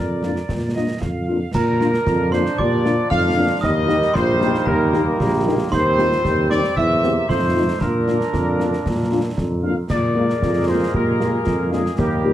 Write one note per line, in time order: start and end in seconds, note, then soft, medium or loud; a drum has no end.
0.00 0.41 F2 medium
0.00 0.97 A#4 medium
0.00 0.71 D5 medium
0.23 0.33 A#3 soft
0.23 0.33 D4 soft
0.23 0.33 F4 soft
0.23 snare soft
0.36 snare soft
0.49 0.93 A#2 medium
0.49 concert bass drum medium
0.49 snare medium
0.75 0.86 A#3 soft
0.75 0.86 D4 soft
0.75 0.86 F4 soft
0.75 1.00 D#5 soft
1.01 1.45 F2 medium
1.01 1.54 F5 medium
1.01 concert bass drum medium
1.01 snare medium
1.28 1.37 A#3 soft
1.28 1.38 D4 soft
1.28 1.37 F4 soft
1.54 1.97 A#2 medium
1.54 3.60 F3 medium
1.54 3.59 D4 medium
1.54 2.28 A#4 medium
1.54 2.29 A#4 medium
1.54 2.29 A#5 medium
1.54 concert bass drum medium
1.54 snare medium
1.54 crash medium
1.80 1.90 A#3 medium
1.80 1.90 D4 medium
1.80 1.90 F4 medium
1.80 snare medium
1.94 snare medium
2.06 2.50 F2 medium
2.06 2.31 F4 medium
2.06 concert bass drum medium
2.06 snare medium
2.32 2.42 A#3 medium
2.32 2.61 D4 medium
2.32 2.42 D4 medium
2.32 2.43 F4 medium
2.32 2.58 C5 loud
2.32 2.57 C5 medium
2.32 2.56 C6 medium
2.32 snare medium
2.46 snare medium
2.58 3.02 A#2 medium
2.58 2.86 G4 loud
2.58 3.11 D5 loud
2.58 3.07 D6 medium
2.58 concert bass drum medium
2.84 2.94 A#3 medium
2.84 2.94 D4 medium
2.84 2.94 F4 medium
2.84 3.13 F4 medium
2.84 snare medium
3.10 3.54 F2 medium
3.10 3.38 D#4 medium
3.10 3.59 F5 loud
3.10 3.59 F6 loud
3.10 concert bass drum medium
3.10 snare medium
3.36 3.46 A#3 medium
3.36 3.46 D4 medium
3.36 3.63 D4 medium
3.36 3.46 F4 medium
3.61 4.07 D#2 medium
3.61 5.68 G3 medium
3.61 5.72 A#3 medium
3.61 3.89 D#4 medium
3.61 4.15 D#5 loud
3.61 4.11 D#6 loud
3.61 concert bass drum medium
3.61 snare medium
3.87 3.98 A#3 medium
3.87 3.98 D#4 medium
3.87 4.14 G4 medium
3.87 3.98 G4 medium
3.87 snare medium
4.02 snare medium
4.14 4.59 A#1 medium
4.14 4.39 F4 medium
4.14 4.67 C5 loud
4.14 4.68 C5 loud
4.14 4.63 C6 loud
4.14 concert bass drum medium
4.14 snare medium
4.40 4.51 A#3 medium
4.40 5.21 D#4 medium
4.40 4.51 D#4 medium
4.40 4.51 G4 medium
4.40 snare medium
4.54 snare medium
4.65 5.11 D#2 loud
4.65 5.46 A#4 loud
4.65 5.42 A#4 medium
4.65 5.41 A#5 medium
4.65 concert bass drum medium
4.93 5.04 A#3 medium
4.93 5.03 D#4 medium
4.93 5.03 G4 medium
4.93 snare medium
5.19 5.63 A#1 loud
5.19 5.70 G4 loud
5.19 concert bass drum medium
5.19 snare medium
5.46 5.55 A#3 medium
5.46 5.56 D#4 medium
5.46 5.56 G4 medium
5.70 6.16 D#2 medium
5.70 6.72 G3 medium
5.70 7.29 C4 medium
5.70 5.82 D#4 medium
5.70 6.47 C5 loud
5.70 6.46 C6 loud
5.70 concert bass drum medium
5.70 snare medium
5.70 crash soft
5.98 6.08 C4 medium
5.98 6.08 D#4 medium
5.98 6.26 F4 medium
5.98 6.08 G4 medium
5.98 snare medium
6.12 snare medium
6.24 6.64 D#2 medium
6.24 6.76 G4 medium
6.24 concert bass drum medium
6.24 snare medium
6.50 6.60 C4 medium
6.50 6.60 D#4 medium
6.50 6.60 G4 medium
6.50 6.74 D5 loud
6.50 6.62 D5 medium
6.50 6.75 D6 medium
6.50 snare medium
6.64 snare medium
6.76 7.20 E2 medium
6.76 7.28 A#3 medium
6.76 6.88 E4 medium
6.76 7.25 E5 loud
6.76 7.25 E6 loud
6.76 concert bass drum medium
7.03 7.12 A#3 medium
7.03 7.13 C4 medium
7.03 7.12 G4 medium
7.03 7.27 G4 medium
7.03 snare medium
7.28 7.72 F2 medium
7.28 7.81 A3 medium
7.28 7.77 D#4 medium
7.28 7.53 F4 medium
7.28 7.77 C5 medium
7.28 7.78 C5 loud
7.28 7.78 C6 medium
7.28 concert bass drum medium
7.28 snare medium
7.55 7.64 A3 medium
7.55 7.64 D#4 medium
7.55 7.67 D#4 medium
7.55 7.64 F4 medium
7.80 8.25 A#2 medium
7.80 9.60 A#3 medium
7.80 9.63 D4 medium
7.80 9.60 D4 medium
7.80 9.37 A#4 medium
7.80 9.38 A#4 medium
7.80 9.34 A#5 medium
7.80 concert bass drum medium
7.80 snare medium
8.07 8.16 A#3 medium
8.07 8.17 D4 medium
8.07 8.17 F4 medium
8.07 snare medium
8.21 snare medium
8.33 8.77 F2 medium
8.33 concert bass drum medium
8.33 snare medium
8.59 8.68 A#3 medium
8.59 8.68 D4 medium
8.59 8.68 F4 soft
8.59 snare medium
8.73 snare soft
8.86 9.29 A#2 medium
8.86 concert bass drum medium
8.86 snare medium
9.11 9.21 A#3 medium
9.11 9.20 D4 medium
9.11 9.20 F4 medium
9.38 9.81 F2 medium
9.38 concert bass drum medium
9.38 snare medium
9.63 9.73 A#3 medium
9.63 9.73 D4 medium
9.63 9.73 F4 medium
9.63 9.75 F5 medium
9.88 10.33 A#2 medium
9.88 11.93 G#3 medium
9.88 11.94 A#3 medium
9.88 11.94 G#4 medium
9.88 11.95 A#4 medium
9.88 10.64 D5 medium
9.88 concert bass drum medium
9.88 snare medium
9.88 crash soft
10.15 10.25 G#3 medium
10.15 10.25 A#3 medium
10.15 10.25 F4 medium
10.30 snare medium
10.42 10.85 F2 medium
10.42 10.90 F4 medium
10.42 concert bass drum medium
10.42 snare medium
10.68 10.78 G#3 medium
10.68 10.77 A#3 medium
10.68 10.78 F4 medium
10.68 10.94 C5 medium
10.94 11.38 A#2 medium
10.94 11.47 G4 medium
10.94 11.69 A#4 medium
10.94 concert bass drum medium
11.20 11.30 G#3 medium
11.20 11.30 A#3 medium
11.20 11.30 F4 medium
11.20 snare medium
11.45 11.90 F2 medium
11.45 11.71 F4 medium
11.45 concert bass drum medium
11.45 snare medium
11.71 11.81 G#3 medium
11.71 11.81 A#3 medium
11.71 11.84 D4 medium
11.71 11.81 F4 medium
11.71 11.98 G#4 medium
11.71 snare medium
11.86 snare medium
11.98 12.33 D#2 medium
11.98 12.33 G3 medium
11.98 12.33 A#3 medium
11.98 12.22 D#4 medium
11.98 12.33 G4 medium
11.98 12.33 A#4 medium
11.98 concert bass drum medium
11.98 snare medium
12.24 12.33 G3 medium
12.24 12.33 A#3 medium
12.24 12.33 F4 medium
12.24 12.33 G4 medium